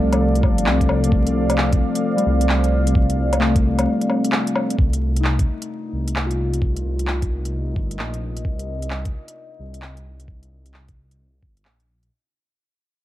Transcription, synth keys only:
0.00 1.56 F3 medium
0.00 0.31 G3 medium
0.00 1.07 A3 medium
1.08 2.83 A3 medium
2.16 3.89 G3 medium
3.39 4.97 A3 medium
5.20 6.96 D#4 medium
6.27 7.99 F4 soft

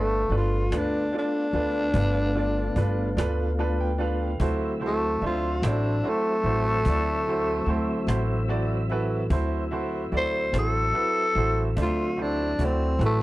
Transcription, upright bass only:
0.00 0.27 G1 medium
0.30 0.68 G1 medium
0.71 1.09 D2 medium
1.53 1.91 D2 medium
1.94 2.72 G1 medium
2.76 3.13 G1 medium
3.17 4.35 D2 medium
4.40 5.17 D2 medium
5.22 5.59 D2 medium
5.62 6.00 A1 medium
6.44 6.82 A1 medium
6.85 7.63 D2 medium
7.66 8.04 D2 medium
8.07 9.26 A1 medium
9.30 10.08 D2 medium
10.12 10.50 D2 medium
10.53 10.91 A1 medium
11.35 11.73 A1 medium
11.77 12.55 D2 medium
12.59 12.97 D2 medium
12.99 13.23 A1 medium

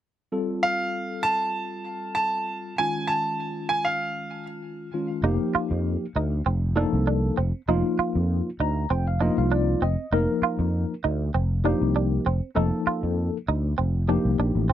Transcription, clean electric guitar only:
5.24 5.47 D#4 medium
5.55 5.78 F4 medium
6.16 6.39 D#4 medium
6.46 6.70 C4 medium
6.77 7.00 D4 medium
7.07 7.31 D4 medium
7.37 7.61 C4 medium
7.69 7.92 D#4 medium
7.99 8.22 F4 medium
8.60 8.84 D#4 medium
8.90 9.14 C4 medium
9.21 9.44 D4 medium
9.52 9.75 D4 medium
9.82 10.05 C4 medium
10.13 10.36 D#4 medium
10.43 10.67 F4 medium
11.04 11.27 D#4 medium
11.34 11.58 C4 medium
11.65 11.89 D4 medium
11.96 12.19 D4 medium
12.26 12.50 C4 medium
12.56 12.80 D#4 medium
12.87 13.10 F4 medium
13.48 13.72 D#4 medium
13.78 14.01 C4 medium
14.09 14.32 D4 medium
14.40 14.63 D4 medium
14.70 14.73 C4 medium

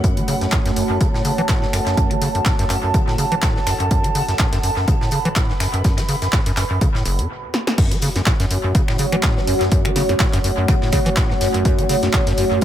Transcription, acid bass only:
0.04 0.19 F#2 medium
0.17 0.23 F#3 loud
0.28 0.35 C#3 medium
0.41 0.47 F#2 medium
0.52 0.60 A2 medium
0.66 0.72 F#2 loud
0.76 0.84 F#2 medium
0.90 0.99 F#2 medium
1.01 1.08 C#3 medium
1.14 1.23 A2 medium
1.25 1.32 C#3 medium
1.38 1.42 E3 medium
1.49 1.64 A2 medium
1.62 1.66 F#2 loud
1.73 1.81 F#2 medium
1.87 1.96 F#2 medium
2.11 2.17 F#3 loud
2.22 2.29 C#3 medium
2.35 2.41 F#2 medium
2.46 2.53 A2 medium
2.59 2.65 F#2 loud
2.70 2.77 F#2 medium
2.83 2.92 F#2 medium
2.94 3.02 C#3 medium
3.08 3.17 A2 medium
3.18 3.26 C#3 medium
3.32 3.35 E3 loud
3.43 3.58 A2 medium
3.56 3.60 F#2 loud
3.67 3.74 F#2 medium
3.80 3.89 F#2 medium
3.91 4.06 F#2 medium
4.04 4.10 F#3 loud
4.15 4.23 C#3 medium
4.28 4.34 F#2 medium
4.39 4.47 A2 medium
4.53 4.59 F#2 loud
4.63 4.71 F#2 medium
4.77 4.86 F#2 medium
4.88 4.95 C#3 medium
5.01 5.10 A2 medium
5.12 5.19 C#3 medium
5.25 5.29 E3 loud
5.36 5.51 A2 medium
5.50 5.53 F#2 loud
5.60 5.68 F#2 medium
5.74 5.83 F#2 medium
5.98 6.04 F#3 loud
6.09 6.16 C#3 medium
6.22 6.28 F#2 medium
6.33 6.40 A2 medium
6.46 6.52 F#2 loud
6.57 6.65 F#2 medium
6.71 6.79 F#2 medium
6.81 6.89 C#3 medium
6.95 7.04 A2 medium
7.06 7.20 F#1 loud
7.19 7.28 F#2 medium
7.78 7.93 F#2 medium
7.91 7.97 F#3 loud
8.02 8.10 C#3 medium
8.16 8.22 F#2 medium
8.27 8.34 A2 medium
8.40 8.46 F#2 loud
8.51 8.58 F#2 medium
8.64 8.73 F#2 medium
8.75 8.82 C#3 medium
8.88 8.97 A2 medium
8.99 9.06 C#3 medium
9.13 9.16 E3 loud
9.23 9.38 A2 medium
9.37 9.40 F#2 loud
9.47 9.55 F#2 medium
9.61 9.70 F#2 medium
9.72 9.87 F#2 medium
9.85 9.91 F#3 loud
9.96 10.03 C#3 medium
10.09 10.15 F#2 medium
10.20 10.27 A2 medium
10.33 10.39 F#2 loud
10.44 10.52 F#2 medium
10.58 10.67 F#2 medium
10.68 10.76 C#3 medium
10.82 10.91 A2 medium
10.93 11.00 C#3 medium
11.06 11.10 E3 loud
11.17 11.32 A2 medium
11.30 11.34 F#2 loud
11.41 11.48 F#2 medium
11.54 11.63 F#2 medium
11.65 11.80 F#2 medium
11.79 11.85 F#3 loud
11.89 11.97 C#3 medium
12.03 12.09 F#2 medium
12.14 12.21 A2 medium
12.27 12.33 F#2 loud
12.38 12.45 F#2 medium
12.51 12.60 F#2 medium

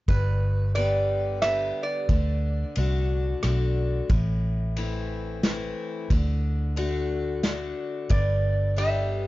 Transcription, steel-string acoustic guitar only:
0.09 1.37 G2 medium
0.75 1.40 D3 medium
0.75 1.40 G3 medium
0.75 1.40 B3 medium
0.75 1.41 G4 medium
1.42 2.07 D3 soft
1.42 2.07 G3 soft
1.42 2.07 B3 medium
1.42 2.07 G4 medium
2.10 2.75 D3 medium
2.77 3.41 D3 soft
2.77 3.41 A3 medium
2.77 3.41 D4 medium
2.77 3.42 F#4 medium
3.43 4.07 D3 medium
3.43 4.07 A3 medium
3.43 4.08 D4 medium
3.43 4.08 F#4 medium
4.10 5.38 A2 medium
4.77 5.41 E3 medium
4.77 5.41 A3 medium
4.77 5.41 C4 medium
4.77 5.41 E4 medium
5.43 6.07 E3 medium
5.43 6.08 A3 soft
5.43 6.08 C4 medium
5.43 6.08 E4 medium
6.11 6.75 D3 medium
6.76 7.41 D3 medium
6.76 7.41 A3 medium
6.76 7.41 D4 medium
6.76 7.42 F#4 medium
7.43 8.08 D3 soft
7.43 8.08 A3 medium
7.43 8.08 D4 medium
7.43 8.08 F#4 medium
8.09 9.27 G2 medium
8.76 9.27 D3 medium
8.76 9.27 G3 medium
8.76 9.27 B3 medium
8.76 9.27 G4 medium

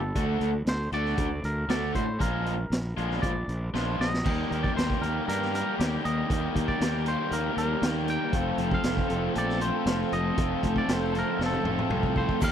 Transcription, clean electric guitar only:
0.00 0.39 A4 medium
0.69 0.93 C5 loud
0.94 1.46 D5 medium
1.45 1.71 A#4 medium
1.70 1.95 D5 medium
1.95 2.22 C5 medium
2.21 3.27 A#4 medium
3.22 3.96 D5 medium
4.01 4.63 D#5 medium
4.63 4.76 D5 medium
4.77 5.03 C5 medium
5.02 5.27 A#4 medium
5.29 5.54 A#4 medium
5.55 5.78 A#4 medium
5.79 6.05 G4 medium
6.05 6.68 D#5 medium
6.68 7.08 D5 medium
7.08 7.34 C5 medium
7.33 7.57 A#4 medium
7.58 8.10 A#4 loud
8.10 8.74 G5 loud
8.74 9.38 F5 medium
9.38 9.63 D5 medium
9.62 10.14 C5 medium
10.13 10.78 D#5 medium
10.78 10.93 D5 medium
10.93 11.17 C5 medium
11.19 11.43 A#4 medium
11.46 12.15 A4 medium
12.17 12.43 C5 medium
12.44 12.52 F5 loud

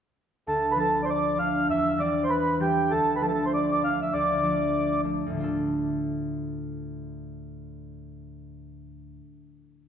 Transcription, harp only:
0.47 1.74 D2 medium
0.76 1.36 F3 soft
0.76 1.38 A3 soft
0.76 1.38 D4 soft
1.37 1.74 F3 soft
1.37 3.21 A3 soft
1.37 1.99 D4 soft
1.69 2.96 E2 medium
1.98 2.59 E3 soft
1.98 2.58 G3 soft
1.98 2.60 D4 medium
2.60 2.96 E3 soft
2.60 2.96 G3 soft
2.60 3.21 D4 soft
2.91 4.12 D2 medium
3.21 3.81 F3 medium
3.21 3.82 A3 soft
3.21 3.83 D4 soft
3.82 4.18 F3 soft
3.82 4.43 A3 soft
3.82 4.43 D4 soft
4.13 5.25 D2 medium
4.43 5.03 F3 soft
4.43 5.04 A3 soft
4.43 5.04 D4 medium
5.03 5.40 F3 soft
5.03 5.36 A3 soft
5.03 7.85 D4 soft
5.26 9.16 D2 soft
5.26 9.20 A2 soft
5.33 9.23 D3 soft
5.33 8.84 A3 soft
5.40 8.88 F4 soft
5.40 8.91 A4 medium

